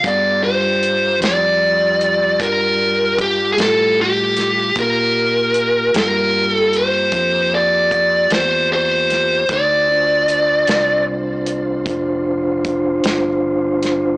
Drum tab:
HH |x-xx-xx-xx-x|x-xx-xx-xx-x|x-xx-xx-xx-x|
SD |---o-----o-o|---o-----o-o|---o-----o-o|
BD |o-----o-o---|o-----o-o---|o-----o-o---|